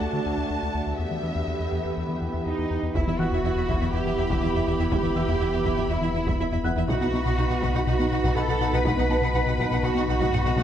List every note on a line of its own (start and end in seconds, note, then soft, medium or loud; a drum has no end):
0.00 0.95 D2 soft
0.00 0.08 D2 medium
0.00 0.99 A3 medium
0.00 0.95 D4 soft
0.00 0.98 D4 medium
0.00 0.95 F#4 soft
0.00 0.99 F#4 medium
0.00 0.99 D5 medium
0.00 0.98 A5 medium
0.13 0.20 D3 soft
0.26 0.33 D2 soft
0.37 0.45 D2 medium
0.50 0.57 D2 soft
0.62 0.70 D2 medium
0.75 0.82 D2 medium
0.87 0.94 D2 medium
0.98 2.43 E2 soft
0.98 1.06 E2 medium
0.98 2.96 E3 medium
0.98 2.72 B3 soft
0.98 2.94 B3 medium
0.98 2.72 G4 soft
0.98 2.96 G4 medium
0.98 2.95 B4 medium
0.98 2.43 E5 medium
1.11 1.18 E3 medium
1.23 1.31 E3 soft
1.35 1.43 E2 medium
1.47 1.55 E2 soft
1.60 1.67 E2 soft
1.72 1.80 E2 medium
1.85 1.92 E2 soft
1.97 2.04 E2 medium
2.09 2.16 E3 medium
2.21 2.29 E2 soft
2.34 2.41 E2 medium
2.46 2.53 E2 soft
2.46 2.92 D#4 medium
2.59 2.66 E2 medium
2.71 2.78 E2 medium
2.83 2.90 E2 medium
2.95 6.90 E1 medium
2.95 3.02 E2 medium
2.95 3.00 E2 soft
2.95 6.85 B3 medium
2.95 6.85 B3 soft
2.95 3.19 E4 medium
2.95 6.85 E4 soft
2.95 3.01 E4 medium
2.95 6.85 E4 medium
2.95 6.85 B4 medium
2.95 3.00 E5 soft
2.95 6.85 B5 soft
2.95 taiko medium
3.07 3.12 E2 soft
3.07 3.15 E3 medium
3.07 3.13 E4 soft
3.07 3.13 E5 soft
3.19 3.25 E2 soft
3.19 3.27 E3 medium
3.19 3.25 E4 soft
3.19 3.94 F#4 medium
3.19 3.25 E5 soft
3.19 4.63 F#5 soft
3.19 4.63 F#6 soft
3.31 3.39 E2 medium
3.31 3.37 E2 medium
3.31 3.38 E4 medium
3.31 3.37 E5 medium
3.44 3.51 E2 soft
3.44 3.50 E2 soft
3.44 3.50 E4 soft
3.44 3.50 E5 soft
3.56 3.64 E2 medium
3.56 3.62 E2 soft
3.56 3.62 E4 soft
3.56 3.62 E5 soft
3.68 3.76 E2 medium
3.68 3.74 E2 medium
3.68 3.74 E4 medium
3.68 3.73 E5 soft
3.68 taiko medium
3.81 3.88 E2 soft
3.81 3.86 E2 soft
3.81 3.87 E4 soft
3.81 3.86 E5 soft
3.93 4.01 E2 medium
3.93 3.99 E2 medium
3.93 3.98 E4 soft
3.93 4.90 G4 medium
3.93 3.99 E5 soft
4.06 4.11 E2 soft
4.06 4.13 E3 medium
4.06 4.11 E4 soft
4.06 4.11 E5 soft
4.18 4.25 E2 medium
4.18 4.23 E2 soft
4.18 4.23 E4 soft
4.18 4.23 E5 soft
4.30 4.37 E2 medium
4.30 4.36 E2 soft
4.30 4.35 E4 medium
4.30 4.35 E5 medium
4.30 taiko medium
4.42 4.50 E2 soft
4.42 4.48 E2 soft
4.42 4.48 E4 soft
4.42 4.47 E5 soft
4.55 4.62 E2 medium
4.55 4.60 E2 soft
4.55 4.60 E4 soft
4.55 4.60 E5 soft
4.67 4.74 E2 medium
4.67 4.73 E2 medium
4.67 4.72 E4 medium
4.67 4.72 E5 medium
4.79 4.87 E2 medium
4.79 4.85 E2 soft
4.79 4.85 E4 soft
4.79 4.84 E5 soft
4.91 4.99 E2 medium
4.91 4.97 E2 medium
4.91 4.97 E4 soft
4.91 5.88 G4 medium
4.91 4.96 E5 soft
4.91 taiko medium
5.03 5.09 E2 soft
5.03 5.11 E3 medium
5.03 5.09 E4 soft
5.03 5.08 E5 soft
5.16 5.22 E2 soft
5.16 5.23 E3 medium
5.16 5.21 E4 soft
5.16 5.21 E5 soft
5.16 6.60 E5 soft
5.16 6.60 E6 soft
5.27 5.36 E2 medium
5.27 5.34 E2 medium
5.27 5.34 E4 medium
5.27 5.33 E5 soft
5.40 5.48 E2 soft
5.40 5.46 E2 soft
5.40 5.46 E4 soft
5.40 5.46 E5 soft
5.53 5.60 E2 medium
5.53 5.58 E2 soft
5.53 5.58 E4 soft
5.53 5.58 E5 soft
5.65 5.72 E2 medium
5.65 5.71 E2 medium
5.65 5.71 E4 medium
5.65 5.70 E5 medium
5.65 taiko medium
5.77 5.85 E2 soft
5.77 5.83 E2 soft
5.77 5.83 E4 soft
5.77 5.82 E5 soft
5.89 5.97 E2 medium
5.89 5.95 E2 medium
5.89 5.95 E4 medium
5.89 6.40 E4 medium
5.89 5.94 E5 medium
6.02 6.07 E2 soft
6.02 6.09 E3 medium
6.02 6.08 E4 soft
6.02 6.07 E5 soft
6.14 6.22 E2 medium
6.14 6.19 E2 soft
6.14 6.20 E4 medium
6.14 6.20 E5 soft
6.26 6.34 E2 medium
6.26 6.32 E2 medium
6.26 6.32 E4 medium
6.26 6.32 E5 medium
6.26 taiko medium
6.39 6.47 E2 soft
6.39 6.44 E2 soft
6.39 6.45 E4 soft
6.39 6.45 E5 medium
6.51 6.59 E2 medium
6.51 6.57 E2 soft
6.51 6.57 E4 soft
6.51 6.57 E5 soft
6.64 6.71 E2 medium
6.64 6.69 E2 medium
6.64 6.69 E4 medium
6.64 6.69 E5 medium
6.64 8.08 F#5 soft
6.64 8.08 F#6 soft
6.76 6.84 E2 medium
6.76 6.81 E2 soft
6.76 6.81 E4 soft
6.76 6.82 E5 medium
6.88 10.63 B1 medium
6.88 6.94 B1 medium
6.88 6.96 B2 medium
6.88 10.63 B3 soft
6.88 10.63 B3 medium
6.88 10.63 D#4 medium
6.88 10.63 D#4 soft
6.88 6.94 D#4 medium
6.88 7.83 F#4 medium
6.88 10.63 F#4 medium
6.88 10.63 B4 medium
6.88 6.94 F#5 medium
6.88 10.63 B5 medium
6.88 taiko medium
7.01 7.06 B1 soft
7.01 7.08 B3 medium
7.01 7.06 D#4 soft
7.01 7.07 F#5 soft
7.13 7.19 B1 soft
7.13 7.21 B3 medium
7.13 7.18 D#4 soft
7.13 7.19 F#5 soft
7.25 7.31 B1 medium
7.25 7.33 B2 medium
7.25 7.31 D#4 medium
7.25 7.30 F#5 medium
7.38 7.43 B1 soft
7.38 7.45 B2 soft
7.38 7.43 D#4 soft
7.38 7.43 F#5 soft
7.50 7.55 B1 soft
7.50 7.57 B2 soft
7.50 7.55 D#4 soft
7.50 7.55 F#5 soft
7.62 7.67 B1 medium
7.62 7.69 B2 medium
7.62 7.68 D#4 medium
7.62 7.67 F#5 medium
7.62 taiko medium
7.75 7.80 B1 soft
7.75 7.82 B2 medium
7.75 7.80 D#4 medium
7.75 7.80 F#5 soft
7.87 7.93 B1 medium
7.87 7.94 B2 medium
7.87 7.93 D#4 medium
7.87 8.35 F#4 medium
7.87 7.92 F#5 medium
7.99 8.05 B1 soft
7.99 8.07 B3 medium
7.99 8.05 D#4 medium
7.99 8.04 F#5 soft
8.12 8.18 B1 soft
8.12 8.19 B2 medium
8.12 8.17 D#4 medium
8.12 8.17 F#5 soft
8.24 8.30 B1 medium
8.24 8.31 B2 medium
8.24 8.29 D#4 medium
8.24 8.29 F#5 medium
8.24 taiko medium
8.36 8.42 B1 soft
8.36 8.43 B2 medium
8.36 8.42 D#4 medium
8.36 8.73 A4 medium
8.36 8.41 F#5 medium
8.36 9.80 B5 medium
8.48 8.54 B1 soft
8.48 8.56 B2 medium
8.48 8.54 D#4 medium
8.48 8.53 F#5 medium
8.61 8.67 B1 medium
8.61 8.68 B2 medium
8.61 8.67 D#4 medium
8.61 8.66 F#5 medium
8.73 8.79 B1 soft
8.73 8.80 B2 medium
8.73 8.79 D#4 medium
8.73 9.84 B4 medium
8.73 8.78 F#5 soft
8.85 8.91 B1 medium
8.85 8.92 B2 medium
8.85 8.91 D#4 medium
8.85 8.91 F#5 medium
8.85 taiko medium
8.97 9.04 B1 soft
8.97 9.05 B3 medium
8.97 9.03 D#4 medium
8.97 9.03 F#5 medium
9.09 9.16 B1 medium
9.09 9.17 B3 medium
9.09 9.15 D#4 soft
9.09 9.15 F#5 soft
9.09 10.54 A5 medium
9.21 9.28 B1 medium
9.21 9.29 B2 medium
9.21 9.27 D#4 medium
9.21 9.28 F#5 medium
9.34 9.40 B1 soft
9.34 9.41 B2 medium
9.34 9.40 D#4 soft
9.34 9.39 F#5 medium
9.46 9.52 B1 soft
9.46 9.54 B2 medium
9.46 9.53 D#4 soft
9.46 9.52 F#5 soft
9.58 9.65 B1 medium
9.58 9.66 B2 medium
9.58 9.65 D#4 medium
9.58 9.65 F#5 medium
9.58 taiko medium
9.71 9.77 B1 soft
9.71 9.78 B2 medium
9.71 9.78 D#4 soft
9.71 9.76 F#5 soft
9.83 9.89 B1 medium
9.83 9.91 B2 medium
9.83 9.90 D#4 medium
9.83 10.08 F#4 medium
9.83 9.89 F#5 medium
9.95 10.02 B1 soft
9.95 10.03 B3 medium
9.95 10.02 D#4 medium
9.95 10.01 F#5 medium
10.08 10.14 B1 soft
10.08 10.15 B2 medium
10.08 10.14 D#4 medium
10.08 10.63 F#4 medium
10.08 10.14 F#5 soft
10.20 10.26 B1 medium
10.20 10.28 B2 medium
10.20 10.26 D#4 medium
10.20 10.26 F#5 medium
10.20 taiko medium
10.32 10.38 B1 medium
10.32 10.40 B2 medium
10.32 10.38 D#4 medium
10.32 10.38 F#5 medium
10.32 taiko low-mid medium
10.44 10.51 B1 medium
10.44 10.52 B2 medium
10.44 10.50 D#4 medium
10.44 10.51 F#5 medium
10.44 taiko low-mid medium
10.56 10.63 B1 medium
10.56 10.63 B2 medium
10.56 10.63 D#4 medium
10.56 10.63 F#5 medium
10.56 taiko high medium